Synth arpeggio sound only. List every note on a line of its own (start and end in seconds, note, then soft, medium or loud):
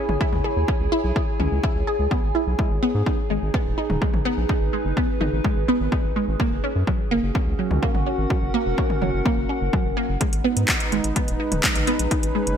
0.21 0.32 E4 loud
0.44 0.49 G#4 medium
0.68 0.80 C#4 medium
0.92 1.04 E4 loud
1.16 1.21 G#4 medium
1.40 1.51 C#4 medium
1.64 1.75 E4 loud
1.87 1.95 G#4 medium
2.11 2.19 B3 loud
2.35 2.43 E4 medium
2.59 2.70 G#3 medium
2.83 2.94 B3 loud
3.06 3.11 D#4 medium
3.30 3.42 G#3 medium
3.54 3.65 B3 loud
3.78 3.82 D#4 medium
4.02 4.13 G#3 medium
4.25 4.37 B3 loud
4.49 4.54 D#4 medium
4.73 4.84 G#3 medium
4.97 5.08 B3 loud
5.21 5.25 D#4 medium
5.45 5.56 G#3 medium
5.68 5.80 B3 loud
5.92 5.97 D#4 medium
6.16 6.27 G#3 medium
6.40 6.51 A#3 loud
6.64 6.68 C#4 medium
6.87 6.99 F#3 medium
7.11 7.23 A#3 loud
7.35 7.40 C#4 medium
7.59 7.70 F#3 medium
7.83 7.94 A#3 loud
8.06 8.11 C#4 medium
8.30 8.42 F#3 medium
8.54 8.65 A#3 loud
8.78 8.82 C#4 medium
9.02 9.13 F#3 medium
9.25 9.37 A#3 loud
9.49 9.54 C#4 medium
9.73 9.85 F#3 medium
9.97 10.08 A#3 loud
10.21 10.32 G#3 medium
10.44 10.56 B3 loud
10.68 10.73 D#4 medium
10.92 11.04 G#3 medium
11.16 11.27 B3 loud
11.40 11.44 D#4 medium
11.64 11.75 G#3 medium
11.87 11.99 B3 loud
12.11 12.16 D#4 medium
12.35 12.46 G#3 medium